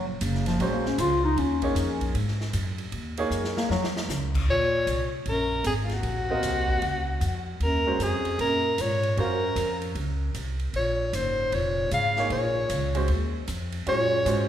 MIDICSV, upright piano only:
0, 0, Header, 1, 2, 480
1, 0, Start_track
1, 0, Tempo, 390117
1, 1689, Time_signature, 4, 2, 24, 8
1, 17822, End_track
2, 0, Start_track
2, 0, Title_t, "Upright piano"
2, 0, Program_c, 0, 0
2, 746, Note_on_c, 0, 56, 66
2, 751, Note_on_c, 0, 61, 58
2, 759, Note_on_c, 0, 66, 53
2, 766, Note_on_c, 0, 72, 74
2, 1463, Note_off_c, 0, 56, 0
2, 1465, Note_off_c, 0, 61, 0
2, 1470, Note_off_c, 0, 66, 0
2, 1473, Note_off_c, 0, 72, 0
2, 1999, Note_on_c, 0, 58, 60
2, 2009, Note_on_c, 0, 63, 56
2, 2014, Note_on_c, 0, 68, 52
2, 2022, Note_on_c, 0, 73, 67
2, 2612, Note_off_c, 0, 58, 0
2, 2617, Note_off_c, 0, 63, 0
2, 2620, Note_off_c, 0, 68, 0
2, 2623, Note_off_c, 0, 73, 0
2, 3914, Note_on_c, 0, 58, 71
2, 3918, Note_on_c, 0, 63, 59
2, 3925, Note_on_c, 0, 68, 69
2, 3935, Note_on_c, 0, 73, 75
2, 4527, Note_off_c, 0, 58, 0
2, 4529, Note_off_c, 0, 63, 0
2, 4533, Note_off_c, 0, 68, 0
2, 4538, Note_off_c, 0, 73, 0
2, 7751, Note_on_c, 0, 60, 59
2, 7754, Note_on_c, 0, 77, 57
2, 7764, Note_on_c, 0, 70, 54
2, 7770, Note_on_c, 0, 75, 65
2, 8369, Note_off_c, 0, 60, 0
2, 8370, Note_off_c, 0, 77, 0
2, 8375, Note_off_c, 0, 70, 0
2, 8378, Note_off_c, 0, 75, 0
2, 9677, Note_on_c, 0, 56, 56
2, 9685, Note_on_c, 0, 61, 54
2, 9687, Note_on_c, 0, 66, 54
2, 9699, Note_on_c, 0, 72, 66
2, 10295, Note_off_c, 0, 56, 0
2, 10299, Note_off_c, 0, 61, 0
2, 10300, Note_off_c, 0, 66, 0
2, 10306, Note_off_c, 0, 72, 0
2, 11297, Note_on_c, 0, 61, 60
2, 11301, Note_on_c, 0, 66, 55
2, 11306, Note_on_c, 0, 72, 57
2, 11319, Note_on_c, 0, 77, 66
2, 12635, Note_off_c, 0, 61, 0
2, 12637, Note_off_c, 0, 66, 0
2, 12639, Note_off_c, 0, 72, 0
2, 12646, Note_off_c, 0, 77, 0
2, 14983, Note_on_c, 0, 58, 60
2, 14986, Note_on_c, 0, 63, 55
2, 14992, Note_on_c, 0, 68, 55
2, 15002, Note_on_c, 0, 73, 69
2, 15594, Note_off_c, 0, 58, 0
2, 15595, Note_off_c, 0, 63, 0
2, 15599, Note_off_c, 0, 68, 0
2, 15603, Note_off_c, 0, 73, 0
2, 15931, Note_on_c, 0, 56, 61
2, 15940, Note_on_c, 0, 61, 49
2, 15948, Note_on_c, 0, 66, 52
2, 15953, Note_on_c, 0, 72, 69
2, 16085, Note_off_c, 0, 56, 0
2, 16090, Note_off_c, 0, 61, 0
2, 16094, Note_off_c, 0, 66, 0
2, 16096, Note_off_c, 0, 72, 0
2, 17060, Note_on_c, 0, 56, 57
2, 17066, Note_on_c, 0, 61, 54
2, 17078, Note_on_c, 0, 66, 53
2, 17085, Note_on_c, 0, 73, 65
2, 17524, Note_off_c, 0, 56, 0
2, 17527, Note_off_c, 0, 61, 0
2, 17533, Note_off_c, 0, 66, 0
2, 17537, Note_off_c, 0, 73, 0
2, 17543, Note_on_c, 0, 56, 56
2, 17554, Note_on_c, 0, 61, 50
2, 17562, Note_on_c, 0, 66, 50
2, 17570, Note_on_c, 0, 72, 64
2, 17822, Note_off_c, 0, 56, 0
2, 17822, Note_off_c, 0, 61, 0
2, 17822, Note_off_c, 0, 66, 0
2, 17822, Note_off_c, 0, 72, 0
2, 17822, End_track
0, 0, End_of_file